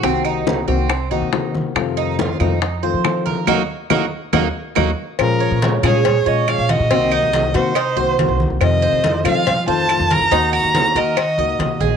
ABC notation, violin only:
X:1
M:4/4
L:1/8
Q:1/4=140
K:Bbm
V:1 name="Violin"
z8 | z8 | z8 | B2 z d2 e f e- |
e3 c4 z | e3 f2 =a2 b- | b b2 e4 z |]